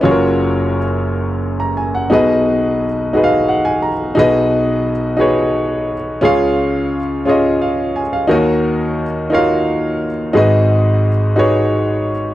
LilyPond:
<<
  \new Staff \with { instrumentName = "Grand piano" } { \time 6/8 \key fis \major \tempo 4. = 58 << { b'16 r2 ais''16 gis''16 fis''16~ | fis''16 r4. r16 fis''16 gis''16 ais''8 | r2. | r2 eis''8 gis''16 eis''16~ |
eis''16 r2 r8. | r2. | } \\ { <cis' eis' fis' gis' ais' cis''>4 r2 | <dis' fis' gis' b' dis''>4 r8 <dis' fis' gis' b' dis'' eis''>4 r8 | <dis' fis' gis' b' dis''>4 r8 <dis' fis' gis' b' cis''>4 r8 | <cis' eis' gis' cis'' eis''>4 r8 <cis' eis' gis' cis'' dis''>4 r8 |
<dis' fis' ais' cis'' dis''>4 r8 <dis' eis' fis' ais' cis'' eis''>4 r8 | <dis' fis' gis' b' dis''>4 r8 <dis' fis' gis' b' cis''>4 r8 | } >> }
  \new Staff \with { instrumentName = "Grand piano" } { \clef bass \time 6/8 \key fis \major <fis,, fis,>2. | <b,, b,>2. | <b,, b,>2. | <cis, cis>2. |
<dis, dis>2. | <gis,, gis,>2. | }
>>